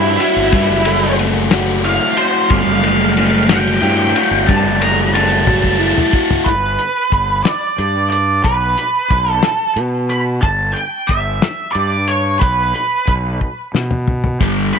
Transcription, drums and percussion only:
0.20 ride medium
0.52 kick loud
0.52 ride medium
0.85 ride medium
1.19 ride medium
1.51 snare loud
1.51 ride loud
1.84 ride medium
2.17 ride medium
2.50 kick loud
2.50 ride medium
2.83 ride medium
3.17 ride medium
3.49 snare loud
3.49 ride loud
3.83 ride medium
4.16 ride medium
4.49 kick loud
4.49 ride loud
4.82 ride medium
5.15 ride medium
5.47 kick medium
5.47 high tom medium
5.64 kick medium
5.98 mid tom medium
6.13 kick loud
6.31 floor tom loud
6.46 kick loud
6.46 closed hi-hat medium
6.79 closed hi-hat medium
7.12 kick medium
7.12 closed hi-hat medium
7.45 snare loud
7.45 closed hi-hat medium
7.78 closed hi-hat medium
8.12 closed hi-hat medium
8.44 kick loud
8.44 closed hi-hat medium
8.78 closed hi-hat medium
9.10 kick medium
9.10 closed hi-hat medium
9.43 snare loud
9.43 closed hi-hat medium
9.76 closed hi-hat medium
10.10 closed hi-hat medium
10.43 kick loud
10.43 closed hi-hat medium
10.76 closed hi-hat medium
11.09 kick medium
11.09 closed hi-hat medium
11.42 snare loud
11.42 closed hi-hat medium
11.75 closed hi-hat medium
12.08 closed hi-hat medium
12.41 kick loud
12.41 closed hi-hat medium
12.74 closed hi-hat medium
13.07 kick medium
13.07 closed hi-hat medium
13.41 kick medium
13.75 snare medium
13.91 mid tom medium
14.07 floor tom medium
14.24 floor tom medium
14.41 kick loud
14.41 closed hi-hat medium
14.41 splash medium
14.73 closed hi-hat medium

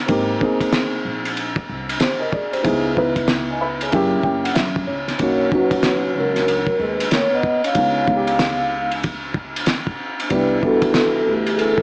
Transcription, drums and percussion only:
0.08 kick loud
0.08 ride medium
0.41 kick medium
0.61 kick medium
0.61 ride medium
0.73 snare loud
0.73 hi-hat pedal medium
0.73 ride medium
1.25 ride medium
1.37 ride medium
1.56 kick loud
1.89 ride medium
2.00 snare loud
2.00 hi-hat pedal medium
2.00 ride medium
2.33 kick medium
2.53 ride medium
2.65 kick loud
2.65 ride medium
2.97 kick medium
3.16 kick medium
3.16 ride medium
3.28 snare loud
3.28 hi-hat pedal medium
3.28 ride medium
3.81 ride medium
3.92 kick loud
3.92 ride medium
4.23 kick medium
4.45 ride medium
4.55 snare loud
4.55 hi-hat pedal medium
4.55 ride medium
4.76 kick medium
5.08 snare soft
5.08 ride medium
5.19 kick loud
5.19 ride medium
5.52 kick loud
5.71 kick loud
5.71 ride medium
5.83 snare loud
5.83 hi-hat pedal medium
5.83 ride medium
6.36 snare soft
6.36 ride medium
6.48 ride medium
6.67 kick medium
7.00 ride medium
7.11 snare loud
7.11 hi-hat pedal soft
7.11 ride medium
7.43 kick medium
7.64 ride medium
7.75 kick loud
7.75 ride medium
8.08 kick loud
8.27 ride medium
8.39 snare loud
8.39 hi-hat pedal medium
8.39 ride medium
8.92 ride medium
9.04 kick loud
9.04 ride medium
9.34 kick medium
9.56 ride medium
9.66 snare loud
9.66 hi-hat pedal medium
9.66 ride medium
9.87 kick medium
10.20 ride medium
10.30 kick loud
10.30 ride medium
10.63 kick loud
10.82 kick medium
10.82 ride medium
10.94 snare loud
10.94 hi-hat pedal medium
10.94 ride medium
11.47 ride medium
11.59 ride medium
11.78 kick medium

